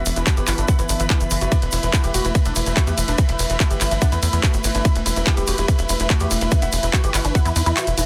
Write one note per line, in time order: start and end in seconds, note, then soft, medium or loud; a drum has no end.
0.00 8.06 E3 medium
0.00 1.54 B3 medium
0.00 8.06 E4 medium
0.00 8.06 B4 medium
0.00 8.06 B5 medium
0.06 0.12 E1 loud
0.06 0.13 E3 medium
0.06 open hi-hat loud
0.06 shaker loud
0.16 0.23 E1 loud
0.16 0.23 E3 medium
0.16 0.20 E4 medium
0.16 closed hi-hat medium
0.16 shaker soft
0.26 0.29 F#4 loud
0.26 0.34 F#4 medium
0.26 kick loud
0.26 clap loud
0.26 closed hi-hat medium
0.26 shaker medium
0.37 0.44 G1 medium
0.37 0.44 E3 medium
0.37 0.39 G4 loud
0.37 closed hi-hat medium
0.37 shaker soft
0.47 0.54 G1 loud
0.47 0.53 E4 medium
0.47 0.55 F#4 medium
0.47 clap medium
0.47 open hi-hat loud
0.47 shaker medium
0.58 0.64 G1 medium
0.58 0.65 E3 medium
0.58 0.62 D4 medium
0.58 closed hi-hat medium
0.58 shaker soft
0.68 0.75 E4 medium
0.68 0.71 F#5 loud
0.68 kick loud
0.68 closed hi-hat medium
0.68 shaker medium
0.79 0.85 G1 medium
0.79 0.86 E3 medium
0.79 0.83 E4 loud
0.79 closed hi-hat medium
0.79 shaker soft
0.89 0.96 G1 loud
0.89 0.93 D4 medium
0.89 open hi-hat loud
0.89 shaker loud
1.00 1.06 G1 medium
1.00 1.07 E3 medium
1.00 1.04 E5 medium
1.00 closed hi-hat medium
1.00 shaker soft
1.10 1.17 E3 medium
1.10 1.14 E4 loud
1.10 kick loud
1.10 clap loud
1.10 closed hi-hat medium
1.10 shaker medium
1.20 1.27 F#1 medium
1.20 closed hi-hat medium
1.20 shaker soft
1.31 1.37 F#1 loud
1.31 1.38 E3 medium
1.31 1.35 B4 medium
1.31 open hi-hat loud
1.31 shaker medium
1.41 1.48 F#1 medium
1.41 1.48 E3 medium
1.41 1.45 F#4 medium
1.41 closed hi-hat medium
1.41 shaker soft
1.52 8.06 A3 medium
1.52 1.59 D4 loud
1.52 1.56 E4 medium
1.52 kick loud
1.52 closed hi-hat medium
1.52 ride medium
1.52 shaker soft
1.62 1.69 E1 medium
1.62 1.69 E3 medium
1.62 1.66 B4 medium
1.62 closed hi-hat medium
1.72 1.79 E1 loud
1.72 1.80 E3 medium
1.72 1.75 E4 loud
1.72 open hi-hat loud
1.72 ride medium
1.72 shaker medium
1.83 1.89 E1 loud
1.83 1.90 E3 medium
1.83 1.85 E4 medium
1.83 closed hi-hat medium
1.83 shaker soft
1.93 1.96 E4 loud
1.93 2.00 F#4 medium
1.93 kick loud
1.93 clap loud
1.93 closed hi-hat medium
1.93 shaker medium
2.04 2.10 E1 medium
2.04 2.11 E3 medium
2.04 2.06 G4 loud
2.04 closed hi-hat medium
2.04 shaker soft
2.14 2.21 E1 loud
2.14 2.21 F#4 loud
2.14 2.20 F#4 loud
2.14 open hi-hat loud
2.14 ride medium
2.14 shaker medium
2.25 2.31 E1 medium
2.25 2.32 E3 medium
2.25 2.30 E4 medium
2.25 closed hi-hat medium
2.25 shaker soft
2.35 2.42 E3 medium
2.35 kick loud
2.35 closed hi-hat medium
2.35 ride medium
2.35 shaker soft
2.45 2.52 E1 medium
2.45 2.53 D4 loud
2.45 2.49 E5 loud
2.45 closed hi-hat medium
2.45 shaker soft
2.56 2.62 E1 loud
2.56 2.63 E3 medium
2.56 2.58 E4 loud
2.56 open hi-hat loud
2.56 ride medium
2.56 shaker medium
2.66 2.73 E1 medium
2.66 2.73 E3 medium
2.66 2.70 E4 medium
2.66 closed hi-hat medium
2.66 shaker soft
2.77 2.81 F#4 loud
2.77 kick loud
2.77 clap loud
2.77 closed hi-hat medium
2.77 shaker soft
2.87 2.94 E2 medium
2.87 2.94 E3 medium
2.87 2.89 G4 loud
2.87 closed hi-hat medium
2.87 shaker soft
2.98 3.04 E1 loud
2.98 3.05 E3 medium
2.98 3.03 E4 medium
2.98 open hi-hat loud
2.98 ride medium
2.98 shaker loud
3.08 3.14 E1 medium
3.08 3.15 D4 medium
3.08 closed hi-hat medium
3.08 shaker soft
3.18 3.25 E3 medium
3.18 kick loud
3.18 closed hi-hat medium
3.18 ride medium
3.18 shaker medium
3.29 3.35 E1 medium
3.29 3.36 E4 medium
3.29 3.33 E5 loud
3.29 closed hi-hat medium
3.39 3.46 E1 loud
3.39 3.46 E3 medium
3.39 open hi-hat loud
3.39 ride medium
3.39 shaker medium
3.50 3.56 E1 loud
3.50 3.57 E3 medium
3.50 3.54 E4 medium
3.50 closed hi-hat medium
3.50 shaker soft
3.60 3.67 E4 medium
3.60 3.62 F#4 loud
3.60 kick loud
3.60 clap loud
3.60 closed hi-hat medium
3.60 shaker medium
3.70 3.77 G1 medium
3.70 3.78 E3 medium
3.70 3.73 G4 loud
3.70 closed hi-hat medium
3.70 shaker soft
3.81 3.87 G1 loud
3.81 3.87 E4 medium
3.81 3.88 E4 medium
3.81 clap medium
3.81 open hi-hat loud
3.81 ride medium
3.81 shaker medium
3.91 3.98 G1 medium
3.91 3.98 E3 medium
3.91 3.95 D4 medium
3.91 closed hi-hat medium
3.91 shaker soft
4.02 4.09 D4 medium
4.02 4.04 F#5 loud
4.02 kick loud
4.02 closed hi-hat medium
4.02 ride medium
4.02 shaker medium
4.12 4.19 E2 medium
4.12 4.19 E3 medium
4.12 4.16 E4 loud
4.12 closed hi-hat medium
4.12 shaker soft
4.23 4.29 E2 loud
4.23 4.28 E4 medium
4.23 open hi-hat loud
4.23 ride medium
4.23 shaker medium
4.33 4.39 E2 medium
4.33 4.40 E3 medium
4.33 4.35 E4 loud
4.33 closed hi-hat medium
4.33 shaker soft
4.43 4.50 E3 medium
4.43 4.46 F#4 loud
4.43 kick loud
4.43 clap loud
4.43 closed hi-hat medium
4.43 shaker medium
4.53 4.60 G1 medium
4.53 closed hi-hat medium
4.53 shaker soft
4.64 4.71 G1 loud
4.64 4.71 E3 medium
4.64 4.68 E4 medium
4.64 open hi-hat loud
4.64 ride medium
4.64 shaker medium
4.75 4.81 G1 medium
4.75 4.82 E3 medium
4.75 4.78 D4 medium
4.75 closed hi-hat medium
4.75 shaker soft
4.85 4.89 E4 medium
4.85 4.92 E4 loud
4.85 kick loud
4.85 closed hi-hat medium
4.85 ride medium
4.85 shaker soft
4.95 5.02 E1 medium
4.95 5.03 E3 medium
4.95 4.99 B4 medium
4.95 closed hi-hat medium
5.06 5.12 E1 loud
5.06 5.13 E3 medium
5.06 5.08 E4 loud
5.06 open hi-hat loud
5.06 ride medium
5.06 shaker medium
5.16 5.23 E1 medium
5.16 5.23 E3 medium
5.16 5.19 E4 medium
5.16 closed hi-hat medium
5.16 shaker soft
5.26 5.29 E4 loud
5.26 5.34 G4 medium
5.26 kick loud
5.26 clap loud
5.26 closed hi-hat medium
5.26 shaker medium
5.37 5.44 E1 medium
5.37 5.44 E3 medium
5.37 5.39 G4 loud
5.37 closed hi-hat medium
5.37 shaker soft
5.47 5.54 E1 loud
5.47 5.53 F#4 loud
5.47 5.55 G4 loud
5.47 open hi-hat loud
5.47 ride medium
5.47 shaker medium
5.58 5.64 E1 medium
5.58 5.65 E3 medium
5.58 5.64 E4 medium
5.58 closed hi-hat medium
5.58 shaker soft
5.68 5.75 E3 medium
5.68 kick loud
5.68 closed hi-hat medium
5.68 ride medium
5.68 shaker soft
5.79 5.85 E1 medium
5.79 5.86 E4 medium
5.79 5.83 E5 loud
5.79 closed hi-hat medium
5.79 shaker soft
5.89 5.96 E1 loud
5.89 5.96 E3 medium
5.89 5.92 E4 loud
5.89 open hi-hat loud
5.89 ride medium
5.89 shaker medium
5.99 6.06 E1 medium
5.99 6.07 E3 medium
5.99 6.04 E4 medium
5.99 closed hi-hat medium
5.99 shaker soft
6.10 6.14 F#4 loud
6.10 kick loud
6.10 clap loud
6.10 closed hi-hat medium
6.10 shaker medium
6.20 6.27 E2 medium
6.20 6.28 E3 medium
6.20 6.23 G4 loud
6.20 closed hi-hat medium
6.20 shaker soft
6.31 6.37 E1 loud
6.31 6.38 E3 medium
6.31 6.37 E4 medium
6.31 open hi-hat loud
6.31 ride medium
6.31 shaker medium
6.41 6.48 E1 medium
6.41 6.48 E4 medium
6.41 closed hi-hat medium
6.41 shaker soft
6.51 kick loud
6.51 closed hi-hat medium
6.51 ride medium
6.51 shaker medium
6.62 6.69 E1 medium
6.62 6.69 F#4 loud
6.62 6.66 E5 loud
6.62 closed hi-hat medium
6.62 shaker soft
6.72 6.79 E1 loud
6.72 6.80 E3 medium
6.72 open hi-hat loud
6.72 ride medium
6.72 shaker medium
6.83 6.89 E1 loud
6.83 6.90 E3 medium
6.83 6.87 E4 medium
6.83 closed hi-hat medium
6.83 shaker soft
6.93 7.00 F#4 medium
6.93 6.96 F#4 loud
6.93 kick loud
6.93 clap loud
6.93 closed hi-hat medium
6.93 shaker soft
7.04 7.10 G1 medium
7.04 7.11 E3 medium
7.04 7.06 G4 loud
7.04 closed hi-hat medium
7.04 shaker soft
7.14 7.21 G1 loud
7.14 7.20 E4 medium
7.14 7.21 F#4 loud
7.14 clap medium
7.14 open hi-hat loud
7.14 ride medium
7.14 shaker medium
7.24 7.31 G1 medium
7.24 7.32 E3 medium
7.24 7.29 D4 medium
7.24 closed hi-hat medium
7.24 shaker soft
7.35 7.42 E4 medium
7.35 7.37 F#5 loud
7.35 kick loud
7.35 closed hi-hat medium
7.35 ride medium
7.35 shaker medium
7.45 7.52 E2 medium
7.45 7.53 E3 medium
7.45 7.49 E4 loud
7.45 closed hi-hat medium
7.45 shaker soft
7.56 7.62 E2 loud
7.56 7.62 E4 medium
7.56 open hi-hat loud
7.56 ride medium
7.56 shaker medium
7.66 7.73 E2 medium
7.66 7.73 E3 medium
7.66 7.69 E4 loud
7.66 closed hi-hat medium
7.66 shaker soft
7.77 7.84 E3 medium
7.77 7.79 F#4 loud
7.77 clap loud
7.77 closed hi-hat medium
7.77 ride medium
7.77 shaker medium
7.87 7.94 E1 medium
7.87 closed hi-hat medium
7.87 shaker soft
7.97 8.04 E1 loud
7.97 8.05 E3 medium
7.97 8.01 E4 medium
7.97 open hi-hat loud
7.97 ride medium
7.97 shaker medium